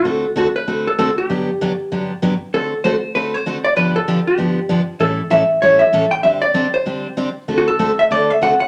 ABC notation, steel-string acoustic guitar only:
X:1
M:4/4
L:1/8
Q:"Swing" 1/4=194
K:Dmix
V:1 name="Steel-string acoustic guitar"
[D,A,CFA] z [D,A,CFA] z [D,A,CFA] z [D,A,CFA] z | [G,,D,F,B,DG] z [G,,D,F,B,DG] z [G,,D,F,B,DG] z [G,,D,F,B,DG] z | [D,A,CFA] z [D,A,CFA] z [D,A,CFA] z [D,A,CFA] z | [G,,D,=F,B,DG] z [G,,D,F,B,DG] z [G,,D,F,B,DG] z [G,,D,F,B,DG] z |
[A,,E,G,^CEA] z [A,,E,G,CEA] z [A,,E,G,CEA] z [A,,E,G,CEA] z | [D,G,CDG] z [D,G,CDG] z [D,G,CDG] z [D,G,CDG] z | [D,A,CFA] z [D,A,CFA] z [D,A,CFA] z [D,A,CFA] z |]